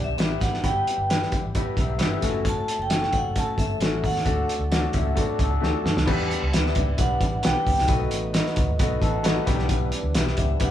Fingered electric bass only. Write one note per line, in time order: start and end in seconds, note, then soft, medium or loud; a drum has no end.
0.07 0.15 B1 medium
0.16 0.34 A1 medium
0.41 0.58 G#1 medium
0.64 0.81 G1 loud
0.98 1.23 G1 medium
1.33 1.49 A1 medium
1.66 muted fingered electric bass stroke soft
1.77 2.01 B1 medium
2.00 2.17 G1 medium
2.23 2.56 F#1 medium
2.79 3.04 F#1 loud
3.14 3.30 F#1 medium
3.47 muted fingered electric bass stroke medium
3.58 3.75 G1 medium
3.80 4.03 A1 medium
4.03 4.20 D#2 medium
4.25 4.43 D2 loud
4.59 4.85 D2 medium
4.94 5.11 C#2 medium
5.30 muted fingered electric bass stroke soft
5.39 5.56 C#2 medium
5.63 5.71 D2 medium
5.85 5.93 F#2 medium
5.96 6.05 C#2 medium
6.08 6.33 E2 loud
6.42 6.50 C#2 medium
6.54 6.71 D2 loud
6.76 6.93 C#2 medium
6.99 7.16 B1 loud
7.21 7.38 A1 medium
7.45 7.53 B1 medium
7.67 7.75 C#2 medium
7.78 7.86 C2 medium
7.89 8.06 B1 loud
8.11 8.37 A1 medium
8.57 8.66 C#2 medium
8.66 8.80 D#2 medium
8.80 8.96 B1 medium
9.02 9.36 A1 loud
9.47 9.90 B1 loud
10.03 10.12 D2 loud
10.14 10.31 B1 loud
10.37 10.55 C#2 loud
10.60 10.71 B1 loud